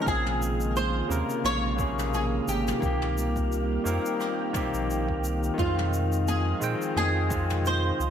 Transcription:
0.00 1.04 C#3 medium
0.00 2.78 D#3 medium
0.00 2.78 G#3 medium
0.00 8.10 F4 medium
0.00 0.07 A#4 medium
0.00 8.10 F5 medium
0.05 1.03 A#1 loud
0.05 1.06 A#3 medium
0.05 5.54 A#3 medium
0.05 1.07 C4 medium
0.05 2.80 F4 medium
0.05 0.76 G#4 medium
0.05 kick loud
0.05 shaker soft
0.10 1.08 G#4 loud
0.26 mid tom medium
0.42 shaker medium
0.60 shaker soft
0.76 1.45 C5 medium
0.76 shaker soft
1.08 1.23 D#2 medium
1.08 1.75 C3 medium
1.08 1.74 C#3 medium
1.08 1.75 A#3 medium
1.08 1.76 A#4 loud
1.08 shaker medium
1.30 shaker soft
1.44 2.40 A#1 loud
1.44 2.14 C#5 loud
1.44 cross-stick medium
1.44 shaker soft
1.76 2.10 C3 medium
1.76 2.09 C#3 medium
1.76 2.10 A#3 medium
1.76 2.11 G#4 medium
1.76 kick loud
1.76 shaker medium
1.99 mid tom medium
1.99 shaker medium
2.14 2.24 G#4 medium
2.14 shaker soft
2.48 2.73 G#1 loud
2.48 3.13 G4 medium
2.48 shaker medium
2.68 mid tom medium
2.68 shaker medium
2.78 3.80 D#3 medium
2.78 3.81 A#3 medium
2.82 3.78 C2 medium
2.82 7.96 D#3 medium
2.82 5.56 G3 medium
2.82 3.83 C4 medium
2.82 5.56 G4 medium
2.82 3.84 G4 loud
2.82 kick loud
2.82 shaker soft
3.02 mid tom medium
3.18 shaker medium
3.36 kick medium
3.36 shaker medium
3.52 shaker soft
3.83 3.99 F2 medium
3.83 4.50 D#3 medium
3.83 4.51 A#3 medium
3.83 4.51 C4 medium
3.83 shaker medium
3.87 4.52 A#4 loud
4.06 shaker soft
4.20 cross-stick medium
4.20 shaker soft
4.53 4.85 D#3 medium
4.53 4.86 A#3 medium
4.53 4.86 C4 medium
4.53 4.87 G4 medium
4.53 kick medium
4.53 mid tom medium
4.53 shaker medium
4.74 5.10 A#1 medium
4.74 shaker medium
4.91 shaker soft
5.09 5.51 C2 medium
5.09 kick medium
5.24 shaker medium
5.44 shaker medium
5.54 6.56 D#3 medium
5.54 6.57 G#3 medium
5.58 6.54 F2 medium
5.58 8.10 F3 medium
5.58 8.10 G#3 medium
5.58 6.59 C4 medium
5.58 7.97 F4 medium
5.58 6.30 F4 medium
5.58 6.60 F4 loud
5.58 8.10 D#5 medium
5.58 kick loud
5.58 shaker soft
5.79 mid tom medium
5.94 shaker medium
6.12 shaker medium
6.28 6.96 G#4 medium
6.28 shaker soft
6.60 6.75 A#2 medium
6.60 7.26 D#3 medium
6.60 7.27 G#3 medium
6.60 7.27 C4 medium
6.60 7.28 G5 loud
6.60 shaker medium
6.82 shaker soft
6.96 7.92 F2 loud
6.96 7.67 G#4 loud
6.96 cross-stick medium
6.96 shaker soft
7.29 7.61 D#3 medium
7.29 7.62 G#3 medium
7.29 7.62 C4 medium
7.29 7.63 F4 medium
7.29 kick medium
7.29 shaker medium
7.50 mid tom medium
7.50 shaker soft
7.65 8.10 C5 loud
7.65 shaker soft
7.99 8.10 C#2 loud
7.99 8.10 C#3 medium
7.99 8.10 D#4 medium
7.99 shaker medium

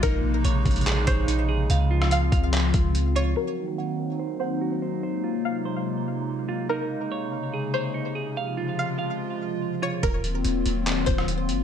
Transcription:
0.00 0.43 A#1 loud
0.00 1.68 C3 medium
0.00 3.33 C#3 medium
0.00 3.32 G#3 medium
0.00 1.66 A#3 medium
0.00 1.68 D#4 medium
0.00 1.26 D#4 loud
0.00 1.03 A#4 loud
0.00 kick loud
0.00 closed hi-hat medium
0.45 0.65 A#1 loud
0.45 1.06 C#5 loud
0.45 closed hi-hat medium
0.65 1.06 A#1 loud
0.65 kick loud
0.65 closed hi-hat medium
0.71 closed hi-hat medium
0.76 closed hi-hat medium
0.81 closed hi-hat medium
0.86 1.47 G#4 loud
0.86 clap loud
0.86 closed hi-hat medium
1.07 1.67 A#1 loud
1.07 1.27 C5 medium
1.07 1.70 C#5 medium
1.07 kick loud
1.07 closed hi-hat medium
1.28 1.70 D#4 medium
1.28 closed hi-hat medium
1.49 1.70 G#4 medium
1.70 2.30 C#2 loud
1.70 3.35 F3 medium
1.70 3.35 C4 medium
1.70 3.35 F4 medium
1.70 2.31 F5 loud
1.70 closed hi-hat medium
1.91 3.14 F4 medium
2.02 cross-stick loud
2.11 2.51 F5 medium
2.11 closed hi-hat medium
2.32 2.72 C#2 loud
2.32 3.36 F5 medium
2.32 kick loud
2.32 closed hi-hat medium
2.53 clap loud
2.53 closed hi-hat medium
2.74 3.34 C#2 loud
2.74 kick loud
2.74 closed hi-hat medium
2.95 closed hi-hat medium
3.16 3.36 F4 medium
3.16 3.36 C#5 medium
3.36 5.01 D#3 medium
3.36 6.66 F#3 medium
3.36 8.32 A#3 medium
3.36 5.01 C4 medium
3.36 6.66 D#4 medium
3.36 4.60 F#4 loud
3.36 4.37 A#4 loud
3.78 4.39 F#5 medium
4.19 4.81 C5 medium
4.40 4.60 C5 medium
4.40 5.03 F#5 medium
4.61 5.03 F#4 medium
4.82 5.02 C5 medium
5.03 6.68 C3 medium
5.03 8.33 G#3 medium
5.03 5.64 C5 loud
5.24 6.47 F4 medium
5.45 5.84 F5 medium
5.65 6.70 C5 medium
6.49 6.69 F4 medium
6.69 10.00 C3 medium
6.69 10.00 C#3 medium
6.69 7.93 D#4 loud
6.69 8.35 D#4 medium
6.69 7.70 A#4 loud
7.12 7.73 C#5 loud
7.54 8.14 G#4 medium
7.74 7.94 C5 medium
7.74 8.36 C#5 medium
7.94 8.36 D#4 medium
8.15 8.36 G#4 medium
8.37 10.01 F3 medium
8.37 10.01 G#3 medium
8.37 10.01 F4 medium
8.37 8.97 F5 loud
8.57 9.81 F4 medium
8.79 9.18 F5 medium
8.99 10.03 F5 medium
9.82 10.03 F4 medium
9.82 10.02 C#5 medium
10.03 10.43 D#1 loud
10.03 11.64 D#3 medium
10.03 11.64 F#3 medium
10.03 11.64 A#3 medium
10.03 11.64 C4 medium
10.03 11.64 F4 medium
10.03 11.03 A#4 loud
10.03 kick loud
10.03 closed hi-hat medium
10.24 closed hi-hat medium
10.45 10.65 D#1 loud
10.45 closed hi-hat medium
10.66 11.06 D#1 loud
10.66 closed hi-hat medium
10.86 clap loud
10.86 closed hi-hat medium
11.06 11.50 D#1 loud
11.06 11.27 C5 medium
11.06 kick loud
11.06 closed hi-hat medium
11.18 cross-stick loud
11.28 closed hi-hat medium
11.49 11.61 F#1 loud
11.49 closed hi-hat medium
11.59 11.64 D#1 loud

